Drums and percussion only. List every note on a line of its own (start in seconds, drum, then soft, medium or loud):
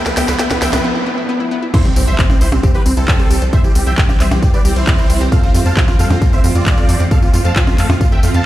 0.06 snare medium
0.06 closed hi-hat soft
0.17 snare loud
0.17 open hi-hat loud
0.17 tambourine medium
0.28 snare loud
0.28 closed hi-hat medium
0.28 tambourine soft
0.39 kick loud
0.39 snare loud
0.39 closed hi-hat medium
0.39 tambourine soft
0.51 snare medium
0.51 closed hi-hat soft
0.51 percussion blips medium
0.62 snare loud
0.62 open hi-hat loud
0.62 tambourine medium
0.73 snare medium
0.73 closed hi-hat medium
0.73 tambourine soft
0.73 percussion blips medium
1.74 kick loud
1.74 closed hi-hat medium
1.74 tambourine soft
1.74 crash loud
1.74 percussion blips medium
1.85 closed hi-hat soft
1.85 tambourine soft
1.96 open hi-hat loud
1.96 tambourine medium
2.07 closed hi-hat medium
2.07 tambourine soft
2.19 kick loud
2.19 clap loud
2.19 closed hi-hat medium
2.19 tambourine soft
2.30 closed hi-hat soft
2.30 tambourine soft
2.30 percussion blips medium
2.41 open hi-hat loud
2.41 tambourine medium
2.52 closed hi-hat medium
2.52 tambourine soft
2.52 percussion blips medium
2.63 kick loud
2.63 closed hi-hat medium
2.63 tambourine soft
2.75 closed hi-hat soft
2.75 tambourine soft
2.86 open hi-hat loud
2.86 tambourine medium
2.97 closed hi-hat medium
2.97 tambourine soft
3.08 kick loud
3.08 clap loud
3.08 closed hi-hat medium
3.08 tambourine soft
3.19 closed hi-hat soft
3.19 tambourine soft
3.31 open hi-hat loud
3.31 tambourine medium
3.42 closed hi-hat medium
3.42 tambourine soft
3.53 kick loud
3.53 closed hi-hat medium
3.53 tambourine soft
3.64 closed hi-hat soft
3.64 tambourine soft
3.75 open hi-hat loud
3.75 tambourine medium
3.87 closed hi-hat medium
3.87 tambourine soft
3.98 kick loud
3.98 clap loud
3.98 closed hi-hat medium
3.98 tambourine soft
4.09 closed hi-hat soft
4.09 tambourine soft
4.09 percussion blips medium
4.20 clap medium
4.20 open hi-hat loud
4.20 tambourine medium
4.31 closed hi-hat medium
4.31 tambourine soft
4.31 percussion blips medium
4.42 kick loud
4.42 closed hi-hat medium
4.42 tambourine soft
4.54 closed hi-hat soft
4.54 tambourine soft
4.65 open hi-hat loud
4.65 tambourine medium
4.76 closed hi-hat medium
4.76 tambourine soft
4.87 kick loud
4.87 clap loud
4.87 closed hi-hat medium
4.87 tambourine soft
4.99 closed hi-hat soft
4.99 tambourine soft
5.10 open hi-hat loud
5.10 tambourine medium
5.21 closed hi-hat medium
5.21 tambourine soft
5.32 kick loud
5.32 closed hi-hat medium
5.32 tambourine soft
5.32 percussion blips medium
5.43 closed hi-hat soft
5.43 tambourine soft
5.54 open hi-hat loud
5.54 tambourine medium
5.66 closed hi-hat medium
5.66 tambourine soft
5.77 kick loud
5.77 clap loud
5.77 closed hi-hat medium
5.77 tambourine soft
5.88 closed hi-hat soft
5.88 tambourine soft
5.88 percussion blips medium
5.99 open hi-hat loud
5.99 tambourine medium
6.10 closed hi-hat medium
6.10 tambourine soft
6.10 percussion blips medium
6.22 kick loud
6.22 closed hi-hat soft
6.22 tambourine soft
6.33 closed hi-hat soft
6.33 tambourine soft
6.44 open hi-hat loud
6.44 tambourine medium
6.55 closed hi-hat medium
6.55 tambourine soft
6.66 kick loud
6.66 clap loud
6.66 closed hi-hat medium
6.66 tambourine soft
6.78 closed hi-hat soft
6.78 tambourine soft
6.89 open hi-hat loud
6.89 tambourine medium
7.00 closed hi-hat soft
7.00 tambourine soft
7.11 kick loud
7.11 closed hi-hat medium
7.11 tambourine soft
7.22 closed hi-hat soft
7.22 tambourine soft
7.34 open hi-hat loud
7.34 tambourine medium
7.45 closed hi-hat medium
7.45 tambourine soft
7.56 kick loud
7.56 clap loud
7.56 closed hi-hat soft
7.56 tambourine soft
7.67 closed hi-hat soft
7.67 tambourine soft
7.67 percussion blips medium
7.78 clap medium
7.78 open hi-hat loud
7.78 tambourine medium
7.90 closed hi-hat soft
7.90 tambourine soft
7.90 percussion blips medium
8.01 kick loud
8.01 closed hi-hat soft
8.01 tambourine soft
8.12 closed hi-hat soft
8.12 tambourine soft
8.23 open hi-hat loud
8.23 tambourine medium
8.34 closed hi-hat medium
8.34 tambourine soft